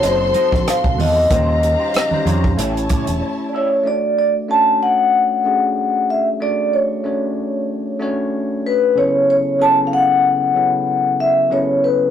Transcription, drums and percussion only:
0.03 closed hi-hat medium
0.03 muted conga soft
0.34 closed hi-hat medium
0.34 muted conga soft
0.34 high conga medium
0.52 kick medium
0.52 cross-stick soft
0.67 cross-stick medium
0.67 closed hi-hat medium
0.67 muted conga soft
0.84 kick medium
0.99 open hi-hat medium
0.99 muted conga soft
0.99 high conga medium
0.99 low conga medium
1.31 kick loud
1.31 closed hi-hat medium
1.31 muted conga soft
1.63 closed hi-hat medium
1.63 muted conga soft
1.94 cross-stick loud
1.94 closed hi-hat medium
1.94 high conga soft
2.11 low conga medium
2.26 closed hi-hat medium
2.26 muted conga soft
2.26 high conga medium
2.26 low conga medium
2.44 kick medium
2.59 cross-stick soft
2.59 closed hi-hat medium
2.59 muted conga soft
2.77 closed hi-hat soft
2.89 kick medium
2.89 closed hi-hat medium
2.89 muted conga soft
2.89 high conga medium
3.07 closed hi-hat medium

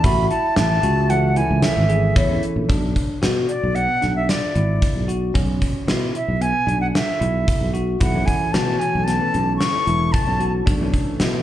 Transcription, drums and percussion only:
0.04 kick loud
0.04 closed hi-hat medium
0.31 closed hi-hat medium
0.56 snare loud
0.56 closed hi-hat medium
0.83 closed hi-hat medium
1.10 closed hi-hat medium
1.36 closed hi-hat medium
1.62 snare loud
1.62 closed hi-hat medium
1.90 closed hi-hat soft
2.16 kick loud
2.16 closed hi-hat medium
2.43 closed hi-hat medium
2.69 kick medium
2.69 closed hi-hat medium
2.96 kick medium
2.96 closed hi-hat soft
3.23 snare loud
3.23 closed hi-hat medium
3.49 closed hi-hat soft
3.76 closed hi-hat medium
4.02 snare soft
4.02 closed hi-hat medium
4.29 snare medium
4.29 closed hi-hat medium
4.55 closed hi-hat soft
4.82 kick medium
4.82 closed hi-hat medium
5.09 closed hi-hat soft
5.35 kick medium
5.35 closed hi-hat medium
5.62 kick medium
5.62 closed hi-hat soft
5.88 snare medium
5.88 closed hi-hat medium
6.15 closed hi-hat soft
6.42 closed hi-hat medium
6.69 closed hi-hat medium
6.95 snare loud
6.95 closed hi-hat medium
7.22 closed hi-hat soft
7.48 kick medium
7.48 closed hi-hat medium
7.75 closed hi-hat soft
8.01 kick medium
8.01 closed hi-hat medium
8.28 kick medium
8.28 closed hi-hat medium
8.54 snare loud
8.54 closed hi-hat medium
8.81 closed hi-hat medium
9.08 snare soft
9.08 closed hi-hat medium
9.34 closed hi-hat medium
9.61 snare medium
9.61 closed hi-hat medium
9.87 closed hi-hat medium
10.14 kick medium
10.14 closed hi-hat medium
10.41 closed hi-hat soft
10.67 kick loud
10.67 closed hi-hat medium
10.94 kick medium
10.94 closed hi-hat soft
11.20 snare medium
11.20 closed hi-hat medium

